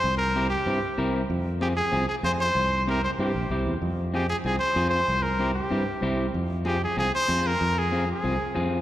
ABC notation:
X:1
M:4/4
L:1/8
Q:1/4=190
K:Fm
V:1 name="Trumpet"
c B2 G4 z | z2 G A2 A c c- | c2 B c G3 z | z2 G A A c2 c- |
c B2 G4 z | z2 G A A c2 B- | B A2 A4 z |]
V:2 name="Clean electric guitar"
z2 [C=EG] z [CEG] z [CEB] z | z2 [CFA] z [CFA] z [CFA] z | z2 [C=EG] z [CEG] z [CEG] z | z2 [CFA] z [CFA] z [CFA] z |
z2 [C=EG] z [CEG] z [CEG] z | z2 [CFA] z [CFA] z [CFA] z | z2 [CFA] z [CFA] z [CFA] z |]
V:3 name="Fingered electric bass" clef=bass
C,,4 G,, z C,,2 | F,,4 C,, z F,,2 | C,,4 G,, B,,, C,, =E,, | F,,4 C,, z F,,2 |
C,,4 G,, z C,,2 | F,,4 C,, z F,,2 | F,,4 C,, z F,,2 |]